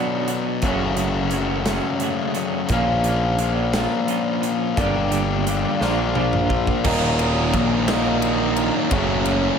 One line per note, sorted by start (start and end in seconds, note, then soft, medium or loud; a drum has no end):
0.00 0.62 B2 medium
0.00 0.61 F#3 medium
0.00 0.62 F#3 medium
0.00 0.30 B3 medium
0.00 0.62 B3 medium
0.00 0.28 D4 medium
0.00 0.63 D4 medium
0.00 0.26 F#4 medium
0.00 0.63 F#4 medium
0.28 0.63 B3 soft
0.28 0.62 D4 medium
0.28 0.61 F#4 medium
0.28 closed hi-hat medium
0.62 1.79 F#1 medium
0.62 1.32 F#2 medium
0.62 2.69 F#2 medium
0.62 1.32 C#3 medium
0.62 2.69 C#3 medium
0.62 0.98 F#3 medium
0.62 2.69 F#3 medium
0.62 0.97 A3 medium
0.62 2.69 A3 medium
0.62 0.97 C#4 medium
0.62 2.69 C#4 medium
0.62 0.95 F#4 medium
0.62 2.70 F#4 medium
0.62 kick loud
0.62 closed hi-hat medium
0.96 1.29 F#3 soft
0.96 1.31 A3 medium
0.96 1.32 C#4 medium
0.96 1.33 F#4 medium
0.96 closed hi-hat medium
1.31 1.68 F#3 medium
1.31 1.67 A3 medium
1.31 1.66 C#4 medium
1.31 1.64 F#4 medium
1.31 closed hi-hat medium
1.65 1.99 F#3 medium
1.65 2.01 A3 medium
1.65 2.01 C#4 medium
1.65 2.02 F#4 medium
1.65 snare medium
1.65 closed hi-hat medium
2.00 2.37 F#3 medium
2.00 2.36 A3 medium
2.00 2.35 C#4 medium
2.00 2.33 F#4 medium
2.00 closed hi-hat medium
2.34 2.70 F#3 medium
2.34 2.69 A3 medium
2.34 2.69 C#4 medium
2.34 2.68 F#4 medium
2.34 closed hi-hat medium
2.69 3.86 A#1 medium
2.69 3.39 A#2 medium
2.69 4.76 A#2 medium
2.69 3.37 F3 medium
2.69 4.76 F3 medium
2.69 3.07 A#3 medium
2.69 4.79 A#3 medium
2.69 4.77 C#4 medium
2.69 3.05 C#4 medium
2.69 kick medium
2.69 closed hi-hat medium
2.73 4.77 F4 medium
2.73 3.03 F4 loud
3.04 3.39 A#3 medium
3.04 3.40 C#4 medium
3.04 3.41 F4 medium
3.04 closed hi-hat medium
3.39 4.06 F3 medium
3.39 3.76 A#3 medium
3.39 3.73 C#4 medium
3.39 3.72 F4 medium
3.39 closed hi-hat medium
3.73 4.08 A#3 medium
3.73 4.08 C#4 medium
3.73 4.09 F4 medium
3.73 snare loud
3.73 closed hi-hat medium
4.07 4.75 F3 medium
4.07 4.44 A#3 medium
4.07 4.42 C#4 medium
4.07 4.40 F4 medium
4.07 closed hi-hat medium
4.41 4.78 A#3 medium
4.41 4.76 C#4 medium
4.41 4.75 F4 medium
4.41 closed hi-hat medium
4.76 5.64 G1 medium
4.76 5.46 G2 medium
4.76 5.79 G2 medium
4.76 5.46 D3 medium
4.76 5.79 D3 medium
4.76 5.12 G3 medium
4.76 5.80 G3 medium
4.76 5.11 A#3 medium
4.76 5.80 A#3 medium
4.76 5.10 D4 medium
4.76 5.80 D4 medium
4.76 5.09 G4 medium
4.76 5.80 G4 medium
4.76 kick loud
4.76 closed hi-hat medium
5.10 5.44 G3 medium
5.10 5.45 A#3 medium
5.10 5.46 D4 medium
5.10 5.47 G4 medium
5.10 closed hi-hat medium
5.45 5.78 G3 medium
5.45 5.79 A#3 medium
5.45 5.80 D4 medium
5.45 5.79 G4 medium
5.45 closed hi-hat medium
5.80 6.68 A#1 medium
5.80 6.83 A#2 medium
5.80 6.51 A#2 medium
5.80 6.83 F3 medium
5.80 6.13 F3 medium
5.80 6.15 A#3 medium
5.80 6.83 A#3 medium
5.80 6.16 D4 medium
5.80 6.83 D4 medium
5.80 6.17 F4 medium
5.80 6.84 F4 loud
5.80 snare soft
6.15 6.82 F3 medium
6.15 6.51 A#3 medium
6.15 6.49 D4 medium
6.15 6.48 F4 medium
6.15 mid tom medium
6.33 mid tom medium
6.49 6.84 A#3 medium
6.49 6.83 D4 medium
6.49 6.82 F4 medium
6.49 kick medium
6.67 kick medium
6.84 7.54 D#1 medium
6.84 7.86 D#2 medium
6.84 7.86 A#2 medium
6.84 7.86 D#3 medium
6.84 7.88 F#3 medium
6.84 7.87 A#3 loud
6.84 7.87 D#4 loud
6.84 kick loud
6.84 crash loud
7.19 ride medium
7.53 8.69 A#1 medium
7.53 kick medium
7.53 ride medium
7.88 8.90 D#2 medium
7.88 8.91 A#2 medium
7.88 8.90 D#3 medium
7.88 8.92 F#3 medium
7.88 8.90 A#3 medium
7.88 8.89 D#4 medium
7.88 snare medium
7.88 ride medium
8.22 ride medium
8.57 ride medium
8.91 9.49 F#1 medium
8.91 9.59 F#2 medium
8.91 9.59 C#3 medium
8.91 9.59 F#3 medium
8.91 9.59 A3 medium
8.91 9.59 C#4 medium
8.91 9.59 F#4 medium
8.91 kick loud
8.91 ride loud
9.26 ride medium